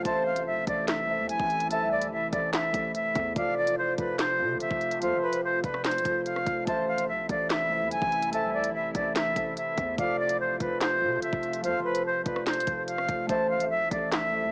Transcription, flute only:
0.05 A5
0.26 F5
0.46 E5
0.68 D5
0.88 E5
1.29 G#5
1.70 A5
1.92 D5
2.12 E5
2.32 D5
2.54 E5
2.95 E5
3.36 F5
3.57 D5
3.78 C5
3.98 B4
4.19 C5
4.61 E5
5.02 F5
5.22 B4
5.44 C5
5.64 B4
5.85 C5
6.25 F5
6.67 A5
6.88 F5
7.08 E5
7.30 D5
7.50 E5
7.92 G#5
8.32 A5
8.54 D5
8.74 E5
8.95 D5
9.16 E5
9.57 E5
9.98 F5
10.19 D5
10.40 C5
10.60 B4
10.81 C5
11.23 E5
11.64 F5
11.84 B4
12.06 C5
12.25 B4
12.47 C5
12.87 F5
13.29 A5
13.50 F5
13.70 E5
13.92 D5
14.12 E5

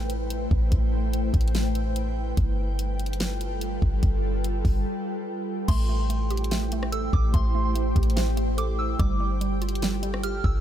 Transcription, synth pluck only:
5.69 A3
5.89 A3
6.10 A3
6.30 G4
6.51 A3
6.73 A3
6.92 A4
7.34 A3
7.55 A3
7.75 A3
7.96 G4
8.16 A3
8.37 A3
8.58 A4
9.00 G3
9.20 G3
9.41 G3
9.62 F4
9.82 G3
10.03 G3
10.24 G4

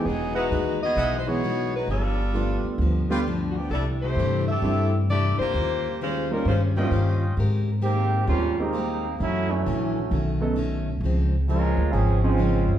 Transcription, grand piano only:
1.27 E3 G#3 B3 D#4 F#4
2.33 G3 A3 B3 D4 F4
3.10 G3 A3 B3 D4 G4
4.62 G3 A3 C4 D4 E4
6.30 G3 A#3 C#4 D#4 F4
6.77 G3 A#3 C#4 D#4 F4
8.60 G#3 A#3 C4 D#4 G4
10.40 F#3 B3 C#4 D#4 A4
12.24 F3 C4 C#4 D#4 G#4

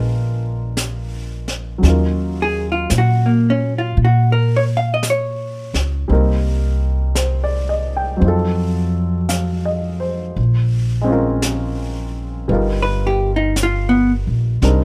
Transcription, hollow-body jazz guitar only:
2.42 G#4
2.72 F4
2.98 F#4
3.26 A#3
3.50 C#4
3.78 F4
4.05 F#4
4.32 A#4
4.56 C#5
4.77 F5
4.94 D#5
5.10 C#5
12.82 B4
13.07 G4
13.36 D#4
13.63 F4
13.89 B3

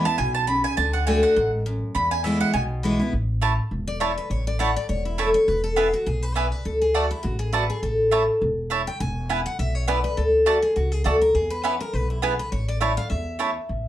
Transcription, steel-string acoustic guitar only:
Already playing: E2
0.05 B3 E4
0.19 B2
0.48 C#3
0.77 D3
1.07 D3 A3 D4 F#4
1.36 G#2
1.66 F#2
1.95 E2
2.25 E3 G#3 B3 E4
2.54 B2
2.83 E3 G#3 B3 E4
2.99 B3 E4
3.87 D5
4.01 C#5
4.18 B4
4.31 C#5
4.47 D5
4.60 F#5
4.76 D5
4.89 C#5
5.05 E4
5.18 A4
5.34 C#5
5.48 B4
5.64 A4
5.77 G#4
5.93 F#4
6.06 G#4
6.22 B4
6.36 D5
6.52 B4
6.65 A4
6.81 G#4
6.95 F#4
7.11 E4
7.23 F#4
7.39 G#4
7.53 B4
7.70 G#4
7.83 A4
8.87 G5
9.00 G#5
9.46 F#5
9.59 E5
9.75 C#5
9.88 D5
10.04 B4
10.17 A4
10.62 G#4
10.76 F#4
10.92 G#4
11.04 A4
11.21 A#4
11.35 G#4
11.50 B4
11.64 C#5
11.80 A#4
11.93 B4
12.10 E4
12.23 G#4
12.39 B4
12.52 C#5
12.68 D5
12.81 E5
12.97 F5
13.10 E5

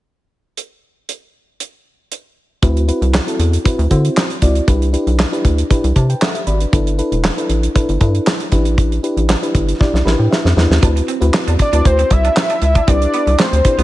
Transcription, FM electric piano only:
2.62 C4 E4 F#4 B4
2.88 C4 E4 F#4 B4
3.27 C4 E4 F#4 A4
3.64 C4 E4 F#4 B4
3.90 C4 E4 F#4 C5
4.42 C4 E4 F#4 D5
4.67 D4 E4 G4 B4
4.93 D4 E4 G4 B4
5.32 D4 E4 G4 B4
5.70 D4 E4 G4 B4
5.96 C5 A5
6.10 B4 G5
6.21 A4 E5 F#5
6.35 G4 E5
6.47 F#4 D5 B5
6.61 D4 B4
6.72 D4 E4 A4 B4
6.98 D4 E4 A4 B4
7.37 D4 E4 A4 B4
7.75 D4 E4 A4 B4
8.00 D4 E4 A4 B4
8.51 D4 E4 G4 B4
9.03 D4 E4 G4 B4
9.42 D4 E4 G4 B4
9.80 D4 E4 G4 D5
10.05 D4 E4 G4 A#4 B5
10.12 B4
10.19 G5
10.31 E5
10.56 D4 E4 G4 B4
10.82 C4 E4 F#4 B4
11.20 C4 E4 F#4 B4
11.73 C4 E4 F#4 B4
12.87 D4 E4 G4 B4
13.64 D4 E4 G4 B4
13.78 D4 E4 G4 B4

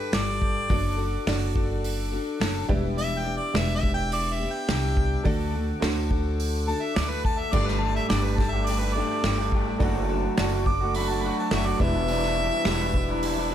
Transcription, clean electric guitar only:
7.52 G3 A3 D4 G4
8.10 G3 A3 D4 G4
8.24 A3 D4 G4
8.40 muted clean electric guitar stroke
8.53 A3 D4 G4
8.68 G3 A3 D4 G4
8.81 A3 D4 G4
8.96 G3 A3 D4 G4
9.24 G3 A3 D4 G4
9.38 A3 D4 G4
9.53 G3 A3 D4 G4
9.67 A3 D4 G4
9.80 F#3 A3 D4 F#4
10.38 F#3 A3 D4 F#4
10.52 A3 D4 F#4
10.67 muted clean electric guitar stroke
10.81 A3 D4 F#4
10.95 F#3 A3 D4 F#4
11.09 A3 D4 F#4
11.23 F#3 A3 D4 F#4
11.51 F#3 A3 D4 F#4
11.66 A3 D4 F#4
11.80 E2 B2 E3 G3 D4 E4
11.95 E3 G3 D4 E4
12.09 E2 B2 E3 G3 D4 E4
12.65 E2 B2 E3 G3 D4 E4
12.80 E3 G3 D4 E4
12.94 muted clean electric guitar stroke
13.09 E3 G3 D4 E4
13.23 E3 G3 D4 E4
13.36 E3 G3 D4 E4
13.50 E3 G3

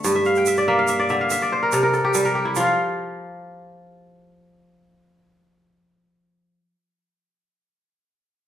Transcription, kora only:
Already playing: A3 C4 A4
0.04 G2
0.16 E5
0.26 F5
0.37 G5
0.47 E5
0.58 D5
0.68 A#3 E5
0.79 F5
0.89 E5
1.00 D5
1.10 D3 E5
1.21 F5
1.31 E5
1.42 D5
1.52 C5
1.63 A#4
1.73 C3 A4
1.83 A#4
1.94 A4
2.05 G4
2.15 G3 A4
2.25 A#4
2.35 G4
2.45 E4
2.56 F3 F4
2.64 F5

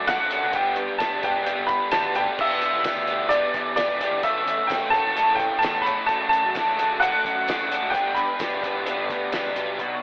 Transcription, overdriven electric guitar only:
0.06 F#3 A3 D4 F#4 D5
0.30 F#3 A3 D4 F#4 D5
0.54 G3 B3 D4 G4 B4
0.99 G3 B3 D4 G4 B4
1.22 G3 B3 D4 G4 B4
1.46 G3 B3 D4 G4 B4
1.91 G3 B3 D4 G4 B4
2.15 G3 B3 D4 G4 B4
2.38 E3 B3 E4 G4 B4
2.84 E3 B3 E4 G4 B4
3.08 E3 B3 E4 G4 B4
3.31 E3 B3 E4 G4 B4
3.77 E3 B3 E4 G4 B4
3.99 E3 B3 E4 G4 B4
4.23 E3 A3 E4 A4 C#5
4.69 E3 A3 E4 A4 C#5
4.92 E3 A3 E4 A4 C#5
5.16 E3 A3 E4 A4 C#5
5.61 E3 A3 E4 A4 C#5
5.83 E3 A3 E4 A4 C#5
6.07 F#3 A3 F#4 D5
6.54 F#3 A3 D4 F#4 D5
6.78 F#3 A3 D4 F#4 D5
7.00 F#3 A3 F#4 D5
7.47 F#3 A3 D4 F#4 D5
7.70 F#3 A3 D4 F#4 D5
7.93 G3 B3 D4 G4 B4
8.40 G3 B3 D4 G4 B4
8.64 G3 B3 D4 G4 B4
8.86 G3 B3 D4 G4 B4
9.33 G3 B3 D4 G4 B4
9.55 G3 B3 D4 G4 B4
9.79 B2

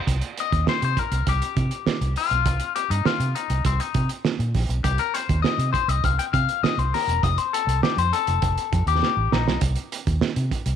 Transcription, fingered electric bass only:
0.07 C2
0.52 D#2
0.67 muted fingered electric bass stroke
0.82 C3
1.12 C2
1.27 C2
1.57 C3
1.86 muted fingered electric bass stroke
2.01 C2
2.31 B1
2.46 C2
2.90 G2
3.05 muted fingered electric bass stroke
3.20 C3
3.50 C2
3.65 C2
3.95 C3
4.39 A#2
4.55 A#1
4.69 B1
4.84 C2
5.29 D#2
5.44 muted fingered electric bass stroke
5.58 C3
5.88 C2
6.04 C2
6.34 C3
6.63 muted fingered electric bass stroke
6.78 C2
7.07 E1
7.23 F1
7.67 C2
7.82 muted fingered electric bass stroke
7.97 F2
8.28 F1
8.42 F1
8.72 F2
8.86 D#2
9.17 A1
9.32 A#1
9.47 B1
9.61 C2
10.07 D#2
10.21 muted fingered electric bass stroke
10.36 C3
10.66 C2

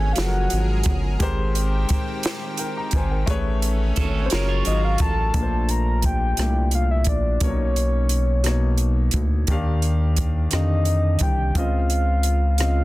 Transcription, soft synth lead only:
Already playing: G#5
0.13 F5
0.21 F#5
4.26 C5
4.33 C#5
4.67 D#5
4.84 F5
5.01 A5
5.70 A#5
6.05 G5
6.75 F5
6.91 E5
7.08 D5
7.42 C#5
10.54 D#5
11.22 G5
11.57 F5
12.60 F5

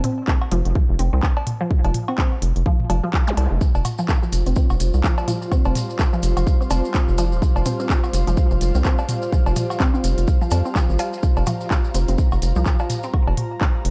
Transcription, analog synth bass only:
0.52 F1
0.65 F1
0.89 F1
0.99 F1
1.13 C2
1.85 F1
2.42 F1
2.56 F1
2.90 F1
3.37 C2
3.51 F1
3.75 F1
4.33 F1
4.46 F1
4.70 F1
4.80 F1
4.94 C2
5.66 F1
6.23 F1
6.37 F1
6.71 F1
7.08 F1
7.32 D#1
7.56 F1
8.13 F1
8.27 F1
8.51 F1
8.61 F1
8.75 C2
9.46 F1
10.04 F1
10.18 F1
10.52 F2
10.89 G#1
11.37 F1
11.94 F1
12.08 F1
12.32 F1
12.42 F1
12.56 C2
13.27 F1
13.85 F1

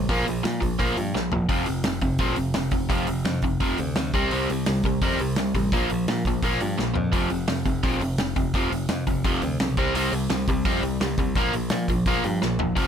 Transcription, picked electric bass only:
0.10 A#1
0.29 A#1
0.46 A#2
0.62 A#1
0.80 A#1
0.98 G2
1.15 A#1
1.34 E1
1.49 F1
1.69 F1
1.86 F1
2.02 F1
2.20 A#1
2.37 F1
2.55 F1
2.72 F1
2.90 F1
3.08 F1
3.25 F2
3.42 F1
3.60 F1
3.79 D2
3.97 D2
4.14 C2
4.32 C2
4.50 C2
4.68 C2
4.84 C2
5.02 F2
5.20 C2
5.39 C2
5.55 A1
5.73 A#1
5.91 A#1
6.08 A#2
6.26 A#1
6.43 A#1
6.61 G2
6.79 A#1
6.97 F2
7.13 F1
7.31 F1
7.48 F1
7.66 F1
7.83 A#1
8.01 F1
8.18 F1
8.36 F1
8.54 F1
8.70 F1
8.89 F2
9.07 F1
9.25 F1
9.42 D2
9.62 B1
9.78 C2
9.94 C2
10.12 C2
10.31 C2
10.48 C2
10.66 F2
10.82 C2
11.00 C2
11.18 C2
11.36 A#1
11.54 A#1
11.71 A#2
11.89 A#1
12.06 A#1
12.25 G2
12.43 A#1
12.59 E1
12.77 F1

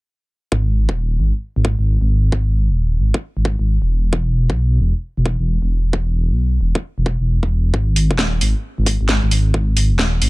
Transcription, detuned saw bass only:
0.52 G#1
0.89 D#1
1.19 G#1
1.56 G#1
1.79 G#1
2.01 G#1
2.32 G#1
2.69 D#1
3.00 G#1
3.37 G#1
3.59 G#1
3.82 E1
4.13 E1
4.50 B1
4.80 E1
5.17 E1
5.40 E1
5.62 E1
5.93 E1
6.30 B1
6.61 E1
6.98 E1
7.20 E1
7.43 E1
7.74 G#1
8.11 D#1
8.41 G#1
8.78 G#1
9.01 G#1
9.23 G#1
9.54 G#1
9.91 D#1
10.22 G#1

